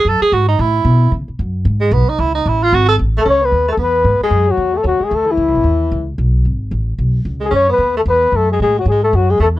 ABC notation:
X:1
M:4/4
L:1/8
Q:"Swing" 1/4=225
K:C#m
V:1 name="Flugelhorn"
z8 | z8 | z6 z A | c B2 A B3 G- |
G F2 A F G A E- | E4- E z3 | z6 z G | c B2 A B2 A G |
G F G A F G A z |]
V:2 name="Tenor saxophone"
A G F D E4 | z4 z G, B, D | E D E ^E F A z A, | C B,2 A, B,3 G,- |
G, F,2 A, F, G, A, E,- | E,4- E, z3 | z6 z G, | C B,2 A, B,2 A, G, |
G, F, G, A, F, G, A, z |]
V:3 name="Upright bass" clef=bass
F,, z G,,2 A,,2 B,,2 | C, z F,,2 G,,2 B,,, z | C,,2 A,,,2 G,,,2 A,,,2 | C,,2 D,,2 E,,2 G,, z |
F,,2 E,,2 D,, z =D,,2 | (3C,, B,,, G,,, D,,2 C,,2 B,,,2 | G,,,2 A,,,2 B,,,2 C,,2 | F,,2 D,,2 E,,2 F,,2 |
A,,2 G,,2 F,,2 E,,2 |]